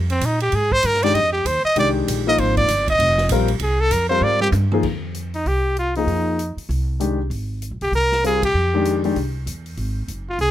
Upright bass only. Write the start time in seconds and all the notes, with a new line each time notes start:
Already playing: F2
0.21 A#2
0.53 G#2
0.84 G2
1.14 F2
1.45 D#2
1.64 muted upright bass stroke
1.76 C2
2.07 A#1
2.38 G#1
2.68 G1
2.99 F1
3.29 A#1
3.60 C2
3.91 F2
4.21 G#2
4.52 G2
4.84 F2
5.45 C2
6.07 F2
6.57 muted upright bass stroke
6.69 C2
7.30 G#1
7.71 A#1
7.81 C2
7.92 C2
8.54 F2
9.16 C2
9.46 E2
9.77 G#1
10.08 F#1
10.39 C2